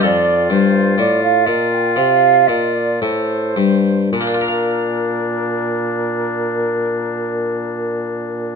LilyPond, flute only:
\new Staff \with { instrumentName = "Flute" } { \time 4/4 \key bes \major \tempo 4 = 54 d''8 c''8 d''16 f''16 ees''16 g''16 f''8 ees''16 d''16 c''4 | bes'1 | }